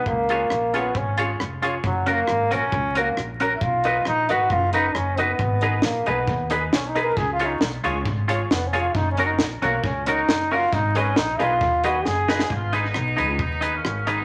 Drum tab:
HH |--x---x---x---x-|--x---x---x---x-|--x---x---x---x-|--x---x---x---x-|
SD |----r-------r---|----r-------r---|----r-------r---|----o-------o---|
BD |o-------o-------|o-------o-------|o-------o-------|o-------o-------|

HH |--x---x---x---x-|--x---x---x---o-|p-x---x---x-----|--x---x---x---x-|
SD |----o-------o---|----o-------o---|----o-------o-oo|----r-------r---|
BD |o-------o-------|o-------o-------|o-------o-------|o-------o-------|